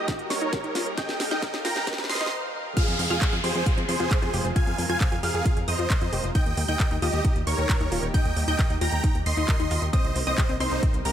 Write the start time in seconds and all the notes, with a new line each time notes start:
Already playing: G3 A#3 D#4 G4 A#4 D#5 D#6, riser
0.08 D#4, kick, snare, closed hi-hat
0.19 closed hi-hat
0.30 A#4 C#5 C#6, snare, open hi-hat
0.42 D#4, closed hi-hat
0.53 A#4, kick, snare, closed hi-hat
0.64 D#4, closed hi-hat
0.75 F4, snare, open hi-hat
0.97 D#4 D#5 F5 G5 G6, kick, snare, closed hi-hat
1.09 snare, closed hi-hat
1.20 snare, open hi-hat
1.31 D#4 D#5 G5 G6, snare, closed hi-hat
1.42 A#4, kick, snare, closed hi-hat
1.54 D#4, snare, closed hi-hat
1.65 F4 G5 A#5 A#6, snare, open hi-hat
1.76 snare, closed hi-hat
1.87 D#4, kick, snare, closed hi-hat
1.93 snare
1.98 snare, closed hi-hat
2.04 snare
2.09 D#5 C6 C7, snare, open hi-hat
2.15 snare
2.21 D#4, snare
2.26 snare
2.77 C3 F3 G#3 F4 G#4 F5 F6, kick, closed hi-hat, crash, downlifter
2.88 F2, closed hi-hat
2.99 F2, open hi-hat
3.10 F2 F4 G#4 F5 F6, closed hi-hat
3.22 C5, kick, clap, closed hi-hat
3.33 F2 F4, closed hi-hat
3.44 F2 G4 G#4 C5 C6, open hi-hat
3.55 F2, closed hi-hat
3.66 F4, kick, closed hi-hat
3.78 F2, closed hi-hat
3.88 F2 G#4 C5 C6, open hi-hat
4.00 F2 F4, closed hi-hat
4.11 C5, kick, clap, closed hi-hat
4.22 F2 F4, closed hi-hat
4.34 F1 G4, open hi-hat
4.45 F1, closed hi-hat
4.56 F4 A#4 F5 G#5 G#6, kick, closed hi-hat
4.67 F2, closed hi-hat
4.78 F2, open hi-hat
4.89 F2 F4 F5 G#5 G#6, closed hi-hat
5.01 C5, kick, clap, closed hi-hat
5.12 F2 F4, closed hi-hat
5.23 F2 G4 G#4 F5 F6, open hi-hat
5.34 F2
5.46 F4, kick, closed hi-hat
5.57 F2, closed hi-hat
5.68 F2 C5 D#5 D#6, open hi-hat
5.79 F2 F4, closed hi-hat
5.90 C5, kick, clap, closed hi-hat
6.01 F2 F4, closed hi-hat
6.13 F1 G4, open hi-hat
6.24 F1, closed hi-hat
6.35 A#2 D#3 G3 D#4 G4 D#5 G5 G6, kick, closed hi-hat
6.46 D#2, closed hi-hat
6.57 D#2, open hi-hat
6.68 D#2 D#4 D#5 G5 G6, closed hi-hat
6.80 A#4, kick, clap, closed hi-hat
6.91 D#2 D#4, closed hi-hat
7.02 D#2 F4 G4 D#5 D#6, open hi-hat
7.13 D#2, closed hi-hat
7.25 D#4, kick, closed hi-hat
7.36 D#2, closed hi-hat
7.47 D#2 A#4 C#5 C#6, open hi-hat
7.58 D#2 D#4, closed hi-hat
7.69 A#4, kick, clap, closed hi-hat
7.81 D#2 D#4, closed hi-hat
7.92 D#1 F4, open hi-hat
8.03 D#1, closed hi-hat
8.14 D#4 D#5 G5 G6, kick, closed hi-hat
8.25 D#2, closed hi-hat
8.37 D#2, open hi-hat
8.48 D#2 D#4 D#5 G5 G6, closed hi-hat
8.59 A#4, kick, clap, closed hi-hat
8.70 D#2 D#4, closed hi-hat
8.81 D#2 F4 G5 A#5 A#6, open hi-hat
8.93 D#2, closed hi-hat
9.04 D#4, kick, closed hi-hat
9.15 D#2, closed hi-hat
9.26 D#2 D#5 C6 C7, open hi-hat
9.37 D#2 D#4, closed hi-hat
9.48 A#4, kick, clap, closed hi-hat
9.60 D#2 D#4, closed hi-hat
9.71 D#2 F4, open hi-hat
9.82 D#2, closed hi-hat
9.93 C3 D#3 G3 A#3 C4 C5 D#5 D#6, kick, closed hi-hat
10.05 C2, closed hi-hat
10.16 C2, open hi-hat
10.27 C2 C4 C5 D#5 D#6
10.38 G4, kick, clap, closed hi-hat
10.49 C2 C4, closed hi-hat
10.60 C2 C4 D#4 C5 C6, open hi-hat
10.72 C2, closed hi-hat
10.83 C4, kick, closed hi-hat
10.94 C2, closed hi-hat
11.05 C2 G4 A#4 A#5, open hi-hat